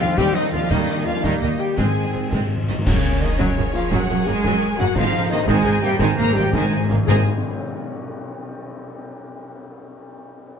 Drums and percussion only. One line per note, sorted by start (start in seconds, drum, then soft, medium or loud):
0.18 concert bass drum medium
0.18 snare medium
0.71 concert bass drum loud
0.71 snare medium
1.24 concert bass drum medium
1.24 snare medium
1.78 concert bass drum medium
1.78 snare medium
2.33 concert bass drum medium
2.33 snare medium
2.87 concert bass drum medium
2.87 snare medium
2.87 crash medium
3.22 snare medium
3.40 concert bass drum medium
3.40 snare medium
3.75 snare medium
3.92 concert bass drum medium
3.92 snare medium
4.27 snare medium
4.45 concert bass drum medium
4.45 snare medium
4.78 snare medium
4.96 concert bass drum medium
4.96 snare medium
5.48 concert bass drum medium
5.48 snare medium
5.65 snare medium
5.82 snare medium
5.99 concert bass drum loud
5.99 snare medium
6.17 snare medium
6.35 snare medium
6.53 concert bass drum medium
6.53 snare medium
6.72 snare medium
6.89 snare medium
7.08 mid tom loud
7.08 tam-tam medium